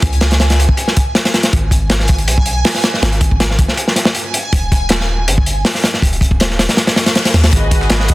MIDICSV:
0, 0, Header, 1, 6, 480
1, 0, Start_track
1, 0, Key_signature, 5, "minor"
1, 0, Tempo, 375000
1, 33, Time_signature, 4, 2, 24, 8
1, 10420, End_track
2, 0, Start_track
2, 0, Title_t, "Synth texture"
2, 0, Program_c, 0, 99
2, 0, Note_on_c, 0, 80, 78
2, 9639, Note_on_c, 0, 75, 78
2, 9642, Note_off_c, 0, 80, 0
2, 10420, Note_off_c, 0, 75, 0
2, 10420, End_track
3, 0, Start_track
3, 0, Title_t, "String section"
3, 0, Program_c, 1, 48
3, 9637, Note_on_c, 1, 66, 76
3, 9638, Note_on_c, 1, 68, 72
3, 9638, Note_on_c, 1, 75, 84
3, 9639, Note_on_c, 1, 71, 72
3, 10420, Note_off_c, 1, 66, 0
3, 10420, Note_off_c, 1, 68, 0
3, 10420, Note_off_c, 1, 71, 0
3, 10420, Note_off_c, 1, 75, 0
3, 10420, End_track
4, 0, Start_track
4, 0, Title_t, "808-style bass"
4, 0, Program_c, 2, 38
4, 31, Note_on_c, 2, 37, 95
4, 860, Note_off_c, 2, 37, 0
4, 1958, Note_on_c, 2, 32, 93
4, 2912, Note_on_c, 2, 35, 86
4, 2931, Note_off_c, 2, 32, 0
4, 3375, Note_off_c, 2, 35, 0
4, 3871, Note_on_c, 2, 32, 96
4, 4699, Note_off_c, 2, 32, 0
4, 5794, Note_on_c, 2, 27, 95
4, 6753, Note_on_c, 2, 31, 87
4, 6772, Note_off_c, 2, 27, 0
4, 7215, Note_off_c, 2, 31, 0
4, 7712, Note_on_c, 2, 27, 94
4, 8540, Note_off_c, 2, 27, 0
4, 9394, Note_on_c, 2, 39, 92
4, 9611, Note_off_c, 2, 39, 0
4, 9634, Note_on_c, 2, 32, 100
4, 10420, Note_off_c, 2, 32, 0
4, 10420, End_track
5, 0, Start_track
5, 0, Title_t, "Reverse cymbal"
5, 0, Program_c, 3, 119
5, 8674, Note_on_c, 3, 60, 60
5, 9634, Note_off_c, 3, 60, 0
5, 10420, End_track
6, 0, Start_track
6, 0, Title_t, "Drums"
6, 30, Note_on_c, 9, 42, 80
6, 32, Note_on_c, 9, 36, 100
6, 158, Note_off_c, 9, 42, 0
6, 160, Note_off_c, 9, 36, 0
6, 162, Note_on_c, 9, 42, 44
6, 267, Note_off_c, 9, 42, 0
6, 267, Note_on_c, 9, 42, 71
6, 271, Note_on_c, 9, 38, 97
6, 393, Note_off_c, 9, 42, 0
6, 393, Note_on_c, 9, 42, 71
6, 399, Note_off_c, 9, 38, 0
6, 406, Note_on_c, 9, 38, 92
6, 511, Note_off_c, 9, 38, 0
6, 511, Note_on_c, 9, 38, 109
6, 515, Note_off_c, 9, 42, 0
6, 515, Note_on_c, 9, 42, 75
6, 638, Note_off_c, 9, 42, 0
6, 638, Note_on_c, 9, 42, 76
6, 639, Note_off_c, 9, 38, 0
6, 643, Note_on_c, 9, 38, 94
6, 764, Note_off_c, 9, 42, 0
6, 764, Note_on_c, 9, 42, 76
6, 771, Note_off_c, 9, 38, 0
6, 880, Note_on_c, 9, 36, 79
6, 892, Note_off_c, 9, 42, 0
6, 990, Note_on_c, 9, 42, 74
6, 1008, Note_off_c, 9, 36, 0
6, 1118, Note_off_c, 9, 42, 0
6, 1121, Note_on_c, 9, 38, 42
6, 1236, Note_on_c, 9, 42, 68
6, 1240, Note_on_c, 9, 36, 100
6, 1249, Note_off_c, 9, 38, 0
6, 1364, Note_off_c, 9, 42, 0
6, 1368, Note_off_c, 9, 36, 0
6, 1472, Note_on_c, 9, 38, 99
6, 1474, Note_on_c, 9, 42, 77
6, 1600, Note_off_c, 9, 38, 0
6, 1602, Note_off_c, 9, 42, 0
6, 1603, Note_on_c, 9, 42, 75
6, 1604, Note_on_c, 9, 38, 100
6, 1716, Note_off_c, 9, 38, 0
6, 1716, Note_off_c, 9, 42, 0
6, 1716, Note_on_c, 9, 38, 95
6, 1716, Note_on_c, 9, 42, 80
6, 1832, Note_off_c, 9, 42, 0
6, 1832, Note_on_c, 9, 42, 69
6, 1837, Note_off_c, 9, 38, 0
6, 1837, Note_on_c, 9, 38, 91
6, 1956, Note_off_c, 9, 42, 0
6, 1956, Note_on_c, 9, 42, 83
6, 1959, Note_on_c, 9, 36, 112
6, 1965, Note_off_c, 9, 38, 0
6, 2084, Note_off_c, 9, 42, 0
6, 2087, Note_off_c, 9, 36, 0
6, 2190, Note_on_c, 9, 36, 93
6, 2199, Note_on_c, 9, 42, 58
6, 2318, Note_off_c, 9, 36, 0
6, 2327, Note_off_c, 9, 42, 0
6, 2428, Note_on_c, 9, 42, 81
6, 2431, Note_on_c, 9, 38, 107
6, 2556, Note_off_c, 9, 42, 0
6, 2557, Note_off_c, 9, 38, 0
6, 2557, Note_on_c, 9, 38, 51
6, 2660, Note_on_c, 9, 42, 66
6, 2678, Note_on_c, 9, 36, 92
6, 2685, Note_off_c, 9, 38, 0
6, 2788, Note_off_c, 9, 42, 0
6, 2794, Note_on_c, 9, 42, 39
6, 2806, Note_off_c, 9, 36, 0
6, 2914, Note_off_c, 9, 42, 0
6, 2914, Note_on_c, 9, 42, 82
6, 3042, Note_off_c, 9, 42, 0
6, 3042, Note_on_c, 9, 36, 84
6, 3145, Note_on_c, 9, 42, 61
6, 3170, Note_off_c, 9, 36, 0
6, 3273, Note_off_c, 9, 42, 0
6, 3386, Note_on_c, 9, 46, 74
6, 3393, Note_on_c, 9, 38, 100
6, 3514, Note_off_c, 9, 38, 0
6, 3514, Note_off_c, 9, 46, 0
6, 3514, Note_on_c, 9, 38, 54
6, 3632, Note_off_c, 9, 38, 0
6, 3632, Note_on_c, 9, 38, 95
6, 3633, Note_on_c, 9, 42, 74
6, 3760, Note_off_c, 9, 38, 0
6, 3761, Note_off_c, 9, 42, 0
6, 3763, Note_on_c, 9, 38, 51
6, 3873, Note_on_c, 9, 42, 72
6, 3876, Note_off_c, 9, 38, 0
6, 3876, Note_on_c, 9, 38, 102
6, 3997, Note_off_c, 9, 42, 0
6, 3997, Note_on_c, 9, 42, 44
6, 4004, Note_off_c, 9, 38, 0
6, 4106, Note_off_c, 9, 42, 0
6, 4106, Note_on_c, 9, 42, 67
6, 4108, Note_on_c, 9, 36, 89
6, 4234, Note_off_c, 9, 42, 0
6, 4236, Note_off_c, 9, 36, 0
6, 4242, Note_on_c, 9, 36, 89
6, 4354, Note_on_c, 9, 38, 106
6, 4354, Note_on_c, 9, 42, 92
6, 4370, Note_off_c, 9, 36, 0
6, 4482, Note_off_c, 9, 38, 0
6, 4482, Note_off_c, 9, 42, 0
6, 4486, Note_on_c, 9, 38, 43
6, 4591, Note_on_c, 9, 36, 94
6, 4591, Note_on_c, 9, 42, 68
6, 4614, Note_off_c, 9, 38, 0
6, 4716, Note_on_c, 9, 38, 43
6, 4719, Note_off_c, 9, 36, 0
6, 4719, Note_off_c, 9, 42, 0
6, 4831, Note_on_c, 9, 42, 74
6, 4844, Note_off_c, 9, 38, 0
6, 4959, Note_off_c, 9, 42, 0
6, 4961, Note_on_c, 9, 38, 41
6, 5065, Note_off_c, 9, 38, 0
6, 5065, Note_on_c, 9, 38, 43
6, 5072, Note_on_c, 9, 42, 63
6, 5189, Note_off_c, 9, 38, 0
6, 5189, Note_on_c, 9, 38, 115
6, 5200, Note_off_c, 9, 42, 0
6, 5307, Note_on_c, 9, 42, 83
6, 5317, Note_off_c, 9, 38, 0
6, 5435, Note_off_c, 9, 42, 0
6, 5554, Note_on_c, 9, 42, 68
6, 5682, Note_off_c, 9, 42, 0
6, 5794, Note_on_c, 9, 36, 114
6, 5796, Note_on_c, 9, 42, 82
6, 5922, Note_off_c, 9, 36, 0
6, 5924, Note_off_c, 9, 42, 0
6, 6038, Note_on_c, 9, 36, 93
6, 6041, Note_on_c, 9, 42, 60
6, 6166, Note_off_c, 9, 36, 0
6, 6169, Note_off_c, 9, 42, 0
6, 6259, Note_on_c, 9, 42, 82
6, 6277, Note_on_c, 9, 38, 118
6, 6387, Note_off_c, 9, 42, 0
6, 6402, Note_off_c, 9, 38, 0
6, 6402, Note_on_c, 9, 38, 49
6, 6530, Note_off_c, 9, 38, 0
6, 6756, Note_on_c, 9, 42, 85
6, 6884, Note_off_c, 9, 42, 0
6, 6884, Note_on_c, 9, 36, 82
6, 6994, Note_on_c, 9, 42, 67
6, 7012, Note_off_c, 9, 36, 0
6, 7122, Note_off_c, 9, 42, 0
6, 7230, Note_on_c, 9, 38, 105
6, 7233, Note_on_c, 9, 46, 69
6, 7356, Note_off_c, 9, 38, 0
6, 7356, Note_on_c, 9, 38, 47
6, 7361, Note_off_c, 9, 46, 0
6, 7471, Note_off_c, 9, 38, 0
6, 7471, Note_on_c, 9, 38, 95
6, 7479, Note_on_c, 9, 42, 75
6, 7599, Note_off_c, 9, 38, 0
6, 7601, Note_on_c, 9, 38, 49
6, 7607, Note_off_c, 9, 42, 0
6, 7710, Note_on_c, 9, 36, 102
6, 7720, Note_on_c, 9, 42, 83
6, 7729, Note_off_c, 9, 38, 0
6, 7838, Note_off_c, 9, 36, 0
6, 7843, Note_off_c, 9, 42, 0
6, 7843, Note_on_c, 9, 42, 42
6, 7949, Note_on_c, 9, 36, 84
6, 7962, Note_off_c, 9, 42, 0
6, 7962, Note_on_c, 9, 42, 61
6, 8077, Note_off_c, 9, 36, 0
6, 8077, Note_on_c, 9, 36, 86
6, 8090, Note_off_c, 9, 42, 0
6, 8192, Note_on_c, 9, 42, 87
6, 8205, Note_off_c, 9, 36, 0
6, 8205, Note_on_c, 9, 38, 110
6, 8320, Note_off_c, 9, 42, 0
6, 8322, Note_off_c, 9, 38, 0
6, 8322, Note_on_c, 9, 38, 43
6, 8438, Note_off_c, 9, 38, 0
6, 8438, Note_on_c, 9, 38, 100
6, 8441, Note_on_c, 9, 42, 83
6, 8562, Note_off_c, 9, 38, 0
6, 8562, Note_on_c, 9, 38, 87
6, 8565, Note_off_c, 9, 42, 0
6, 8565, Note_on_c, 9, 42, 70
6, 8666, Note_off_c, 9, 38, 0
6, 8666, Note_on_c, 9, 38, 98
6, 8678, Note_off_c, 9, 42, 0
6, 8678, Note_on_c, 9, 42, 67
6, 8794, Note_off_c, 9, 38, 0
6, 8797, Note_on_c, 9, 38, 99
6, 8803, Note_off_c, 9, 42, 0
6, 8803, Note_on_c, 9, 42, 72
6, 8912, Note_off_c, 9, 38, 0
6, 8912, Note_on_c, 9, 38, 100
6, 8927, Note_off_c, 9, 42, 0
6, 8927, Note_on_c, 9, 42, 73
6, 9040, Note_off_c, 9, 38, 0
6, 9040, Note_off_c, 9, 42, 0
6, 9040, Note_on_c, 9, 42, 76
6, 9041, Note_on_c, 9, 38, 93
6, 9155, Note_off_c, 9, 42, 0
6, 9155, Note_on_c, 9, 42, 70
6, 9160, Note_off_c, 9, 38, 0
6, 9160, Note_on_c, 9, 38, 104
6, 9283, Note_off_c, 9, 42, 0
6, 9283, Note_on_c, 9, 42, 77
6, 9284, Note_off_c, 9, 38, 0
6, 9284, Note_on_c, 9, 38, 90
6, 9396, Note_off_c, 9, 42, 0
6, 9396, Note_on_c, 9, 42, 79
6, 9397, Note_off_c, 9, 38, 0
6, 9397, Note_on_c, 9, 38, 89
6, 9518, Note_off_c, 9, 42, 0
6, 9518, Note_on_c, 9, 42, 70
6, 9519, Note_off_c, 9, 38, 0
6, 9519, Note_on_c, 9, 38, 104
6, 9632, Note_off_c, 9, 42, 0
6, 9632, Note_on_c, 9, 42, 86
6, 9634, Note_on_c, 9, 36, 107
6, 9637, Note_off_c, 9, 42, 0
6, 9637, Note_on_c, 9, 42, 85
6, 9647, Note_off_c, 9, 38, 0
6, 9762, Note_off_c, 9, 36, 0
6, 9765, Note_off_c, 9, 42, 0
6, 9873, Note_on_c, 9, 36, 96
6, 9873, Note_on_c, 9, 42, 63
6, 9876, Note_off_c, 9, 42, 0
6, 9876, Note_on_c, 9, 42, 64
6, 10000, Note_on_c, 9, 38, 52
6, 10001, Note_off_c, 9, 36, 0
6, 10004, Note_off_c, 9, 42, 0
6, 10107, Note_on_c, 9, 42, 80
6, 10115, Note_off_c, 9, 38, 0
6, 10115, Note_on_c, 9, 38, 112
6, 10116, Note_off_c, 9, 38, 0
6, 10116, Note_off_c, 9, 42, 0
6, 10116, Note_on_c, 9, 38, 112
6, 10116, Note_on_c, 9, 42, 84
6, 10235, Note_off_c, 9, 38, 0
6, 10235, Note_on_c, 9, 38, 54
6, 10244, Note_off_c, 9, 42, 0
6, 10347, Note_on_c, 9, 42, 66
6, 10356, Note_off_c, 9, 42, 0
6, 10356, Note_on_c, 9, 42, 64
6, 10363, Note_off_c, 9, 38, 0
6, 10365, Note_on_c, 9, 36, 94
6, 10420, Note_off_c, 9, 36, 0
6, 10420, Note_off_c, 9, 42, 0
6, 10420, End_track
0, 0, End_of_file